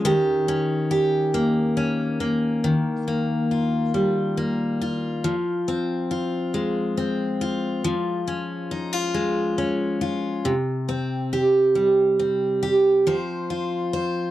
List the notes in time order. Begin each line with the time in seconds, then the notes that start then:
Already playing: G#3 C#4
0.05 D#3 G4
0.48 C#4
0.91 G4
1.34 A#3
1.77 C#4
2.20 A#3
2.64 D#3
3.08 A#3
3.51 F4
3.94 G3
4.37 A#3
4.81 F4
5.24 F3
5.68 C4
6.11 F4
6.54 G#3
6.97 C4
7.41 F4
7.84 F3
8.28 C#4
8.71 D#4
8.93 F4
9.14 G#3
9.58 C#4
10.01 F4
10.45 C3
10.89 C4
11.33 G4
11.75 G3
12.19 C4
12.63 G4
13.07 F3 C5
13.50 F4
13.93 C5